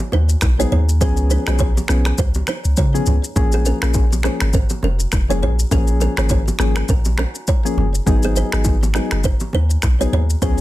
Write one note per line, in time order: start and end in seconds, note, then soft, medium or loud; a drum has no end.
0.00 low bongo medium
0.12 0.36 D#2 medium
0.12 0.22 D#4 medium
0.12 0.21 B4 medium
0.12 low bongo medium
0.29 shaker medium
0.41 0.65 B1 medium
0.41 finger snap medium
0.41 kick medium
0.41 cross-stick medium
0.41 high bongo medium
0.41 shaker medium
0.59 0.80 F#3 medium
0.59 0.80 B3 medium
0.59 0.80 D#4 medium
0.59 0.69 F4 medium
0.59 0.80 G#4 medium
0.59 0.68 C#5 medium
0.59 shaker medium
0.72 1.02 D#2 medium
0.72 0.81 F4 medium
0.72 0.80 C#5 medium
0.72 high bongo medium
0.72 low conga medium
0.89 shaker medium
1.01 1.37 C#2 loud
1.01 1.43 F3 medium
1.01 1.43 B3 medium
1.01 1.43 C#4 medium
1.01 1.10 F4 medium
1.01 1.43 G#4 loud
1.01 1.10 B4 medium
1.01 kick loud
1.01 low conga medium
1.01 shaker medium
1.17 shaker soft
1.30 1.40 D#4 medium
1.30 1.39 B4 medium
1.30 low bongo medium
1.30 shaker medium
1.47 1.80 B1 loud
1.47 1.68 F3 medium
1.47 1.68 B3 medium
1.47 1.68 C#4 medium
1.47 1.57 F#4 medium
1.47 1.68 G#4 medium
1.47 1.56 D#5 medium
1.47 finger snap medium
1.47 cross-stick loud
1.47 shaker medium
1.59 1.69 F4 medium
1.59 1.68 C#5 medium
1.59 kick medium
1.59 high bongo medium
1.59 shaker medium
1.77 low bongo medium
1.77 shaker medium
1.88 2.12 B1 loud
1.88 2.12 F3 medium
1.88 2.12 B3 medium
1.88 2.12 C#4 medium
1.88 2.12 G#4 medium
1.88 finger snap medium
1.88 cross-stick medium
1.88 high bongo medium
1.88 shaker medium
2.05 finger snap medium
2.05 cross-stick medium
2.05 shaker soft
2.18 2.41 C#2 loud
2.18 2.28 F4 medium
2.18 2.27 B4 medium
2.18 kick loud
2.18 low conga medium
2.18 shaker medium
2.34 low bongo medium
2.34 shaker medium
2.47 2.57 D#4 medium
2.47 2.57 B4 medium
2.47 finger snap medium
2.47 cross-stick medium
2.47 low bongo medium
2.47 shaker medium
2.65 2.75 C#2 medium
2.65 shaker medium
2.77 3.00 C#3 loud
2.77 2.87 F4 medium
2.77 2.86 C#5 medium
2.77 kick medium
2.77 high bongo medium
2.77 shaker medium
2.94 3.15 F3 medium
2.94 3.15 B3 medium
2.94 3.15 C#4 medium
2.94 3.15 G#4 medium
2.94 shaker medium
3.06 3.20 C#2 medium
3.06 high bongo soft
3.06 low conga medium
3.06 shaker soft
3.24 shaker medium
3.36 3.72 A#1 loud
3.36 3.78 F3 medium
3.36 3.78 A#3 medium
3.36 3.78 C#4 medium
3.36 3.79 G#4 loud
3.36 kick loud
3.36 low conga medium
3.36 shaker medium
3.52 3.63 B3 medium
3.52 3.62 G#4 medium
3.52 shaker soft
3.65 3.75 C#4 medium
3.65 3.74 A#4 medium
3.65 low bongo medium
3.65 shaker medium
3.82 4.29 A#1 medium
3.82 4.03 F3 medium
3.82 4.03 A#3 medium
3.82 4.03 C#4 medium
3.82 4.04 G#4 medium
3.82 finger snap medium
3.82 cross-stick loud
3.82 shaker medium
3.94 kick medium
3.94 high bongo medium
3.94 shaker medium
4.13 low bongo medium
4.13 shaker medium
4.23 4.47 F3 medium
4.23 4.47 A#3 medium
4.23 4.34 B3 medium
4.23 4.48 C#4 medium
4.23 4.48 G#4 medium
4.23 4.33 G#4 medium
4.23 finger snap medium
4.23 cross-stick medium
4.23 high bongo medium
4.23 shaker medium
4.40 4.64 G#1 medium
4.40 finger snap medium
4.40 cross-stick loud
4.40 shaker soft
4.53 4.63 C#4 medium
4.53 4.63 A#4 medium
4.53 kick loud
4.53 low conga medium
4.53 shaker medium
4.70 low bongo medium
4.70 shaker medium
4.83 5.06 F1 medium
4.83 4.93 C#4 medium
4.83 4.92 A#4 medium
4.83 low bongo medium
5.00 shaker medium
5.12 5.43 F1 medium
5.12 finger snap medium
5.12 kick medium
5.12 cross-stick medium
5.12 high bongo medium
5.12 shaker medium
5.29 5.50 F3 medium
5.29 5.50 A#3 medium
5.29 5.50 C#4 medium
5.29 5.39 F4 medium
5.29 5.51 G#4 medium
5.29 5.38 C#5 medium
5.29 shaker medium
5.42 5.65 A#1 medium
5.42 5.52 F4 medium
5.42 5.51 C#5 medium
5.42 high bongo medium
5.42 low conga medium
5.59 shaker medium
5.71 6.08 A#1 loud
5.71 6.14 F3 medium
5.71 6.14 A#3 medium
5.71 6.14 C#4 medium
5.71 5.81 C#4 medium
5.71 6.14 G#4 loud
5.71 5.80 A#4 medium
5.71 kick loud
5.71 low conga medium
5.71 shaker medium
5.87 shaker soft
6.00 6.10 C#4 medium
6.00 6.10 A#4 medium
6.00 low bongo medium
6.00 shaker medium
6.17 6.50 G#1 loud
6.17 6.39 F3 medium
6.17 6.39 A#3 medium
6.17 6.39 C#4 medium
6.17 6.27 F4 medium
6.17 6.39 G#4 medium
6.17 6.27 C#5 medium
6.17 finger snap medium
6.17 cross-stick loud
6.17 shaker medium
6.29 6.40 F4 medium
6.29 6.39 C#5 medium
6.29 kick loud
6.29 high bongo medium
6.29 shaker medium
6.48 low bongo medium
6.48 shaker medium
6.59 6.83 G#1 medium
6.59 6.83 F3 medium
6.59 6.83 A#3 medium
6.59 6.83 C#4 medium
6.59 6.83 G#4 medium
6.59 finger snap medium
6.59 cross-stick medium
6.59 high bongo medium
6.59 shaker medium
6.76 finger snap medium
6.76 cross-stick medium
6.76 shaker soft
6.88 7.25 A#1 loud
6.88 6.99 C#4 medium
6.88 6.98 A#4 medium
6.88 kick loud
6.88 low conga medium
6.88 shaker medium
7.05 low bongo medium
7.05 shaker medium
7.18 7.28 C#4 medium
7.18 7.27 A#4 medium
7.18 finger snap medium
7.18 cross-stick loud
7.18 low bongo medium
7.35 shaker medium
7.47 7.57 F4 medium
7.47 7.57 C#5 medium
7.47 kick medium
7.47 high bongo medium
7.47 shaker medium
7.65 7.86 F3 medium
7.65 7.86 A#3 medium
7.65 7.86 C#4 medium
7.65 7.86 G#4 medium
7.65 shaker medium
7.77 8.00 F#1 medium
7.77 high bongo medium
7.77 low conga medium
7.95 shaker medium
8.06 8.43 G#1 loud
8.06 8.49 F#3 medium
8.06 8.49 B3 medium
8.06 8.49 D#4 medium
8.06 8.49 G#4 loud
8.06 kick loud
8.06 low conga medium
8.06 shaker medium
8.23 8.33 B3 medium
8.23 8.33 G#4 medium
8.23 shaker soft
8.35 8.46 D#4 medium
8.35 8.45 B4 medium
8.35 low bongo medium
8.35 shaker medium
8.52 8.99 G#1 medium
8.52 8.74 F#3 medium
8.52 8.74 B3 medium
8.52 8.74 D#4 medium
8.52 8.74 G#4 medium
8.52 finger snap medium
8.52 cross-stick loud
8.52 shaker medium
8.64 kick loud
8.64 high bongo medium
8.64 shaker medium
8.83 low bongo medium
8.83 shaker medium
8.94 9.18 F#3 medium
8.94 9.18 B3 medium
8.94 9.04 B3 medium
8.94 9.18 D#4 medium
8.94 9.18 G#4 medium
8.94 9.04 G#4 medium
8.94 finger snap medium
8.94 cross-stick medium
8.94 high bongo medium
8.94 shaker medium
9.11 9.35 F#1 medium
9.11 finger snap medium
9.11 cross-stick loud
9.11 shaker soft
9.24 9.34 D#4 medium
9.24 9.33 B4 medium
9.24 kick loud
9.24 low conga medium
9.24 shaker medium
9.40 low bongo medium
9.40 shaker medium
9.53 9.77 D#2 medium
9.53 9.63 D#4 medium
9.53 9.63 B4 medium
9.53 low bongo medium
9.70 shaker medium
9.82 10.06 B1 medium
9.82 finger snap medium
9.82 kick medium
9.82 cross-stick medium
9.82 high bongo medium
9.82 shaker medium
10.00 10.21 F#3 medium
10.00 10.21 B3 medium
10.00 10.21 D#4 medium
10.00 10.10 F4 medium
10.00 10.21 G#4 medium
10.00 10.09 C#5 medium
10.00 shaker medium
10.12 10.36 D#2 medium
10.12 10.22 F4 medium
10.12 10.21 C#5 medium
10.12 high bongo medium
10.12 low conga medium
10.30 shaker medium
10.42 10.61 C#2 loud
10.42 10.61 F3 medium
10.42 10.61 B3 medium
10.42 10.61 C#4 medium
10.42 10.51 F4 medium
10.42 10.61 G#4 loud
10.42 10.51 B4 medium
10.42 kick loud
10.42 riser medium
10.42 low conga medium
10.42 shaker medium
10.58 shaker soft